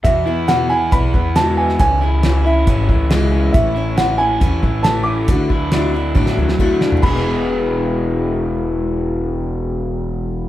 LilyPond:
<<
  \new Staff \with { instrumentName = "Grand piano" } { \time 4/4 \key e \mixolydian \tempo 4 = 137 e''4 fis''8 gis''8 b''4 a''8 gis''8 | gis''4. e''4 r4. | e''4 fis''8 gis''4. a''8 d'''8~ | d'''2. r4 |
b''1~ | b''1 | }
  \new Staff \with { instrumentName = "Overdriven electric guitar" } { \time 4/4 \key e \mixolydian e,8 e'8 b8 e'8 b8 e8 gis8 b8 | cis8 e'8 cis'8 e'8 cis'8 e8 gis8 cis'8 | a,8 e'8 cis'8 e'8 cis'8 e8 a8 cis'8 | d8 e'8 d'8 e'8 d'8 fis8 a8 d'8 |
<e, b, e gis b gis'>1~ | <e, b, e gis b gis'>1 | }
  \new Staff \with { instrumentName = "Steel-string acoustic guitar" } { \time 4/4 \key e \mixolydian <e, b, e gis b e'>8 <e gis b e'>8 <e, b, e gis b e'>8 <e gis b e'>8 <e gis b e'>8 <e gis b e'>8 <e, b, e gis b e'>4 | <cis e gis cis' e'>8 <gis cis' e'>8 <cis e gis cis' e'>8 <gis cis' e'>8 <e gis cis' e'>8 <gis cis' e'>8 <cis e gis cis' e'>4 | <a, e a cis' e'>8 <a cis' e'>8 <a, e a cis' e'>8 <a cis' e'>8 <e a cis' e'>8 <a cis' e'>8 <a, e a cis' e'>4 | <d fis a d' e'>8 <a d' e'>8 <d fis a d' e'>8 <a d' e'>8 <fis a d' e'>8 <a d' e'>8 <d fis a d' e'>4 |
<e, b, e gis b e'>1~ | <e, b, e gis b e'>1 | }
  \new Staff \with { instrumentName = "Upright bass" } { \clef bass \time 4/4 \key e \mixolydian e,2 b,,8 e,4. | cis,2 gis,,8 cis,4. | a,,2 e,8 a,,4. | d,2 a,,8 d,4. |
e,,1~ | e,,1 | }
  \new DrumStaff \with { instrumentName = "Drums" } \drummode { \time 4/4 <hh bd>4 <hh sn>4 <hh bd>8 bd8 <hh sn>8. sn16 | <hh bd>4 <hh sn>4 <hh bd>8 bd8 <hh sn>4 | <hh bd>4 <hh sn>4 <hh bd>8 bd8 <hh sn>4 | <hh bd>8 bd8 <hh sn>4 <bd tommh>16 sn8 sn16 bd8 sn16 tomfh16 |
<cymc bd>4 r4 r4 r4 | r4 r4 r4 r4 | }
>>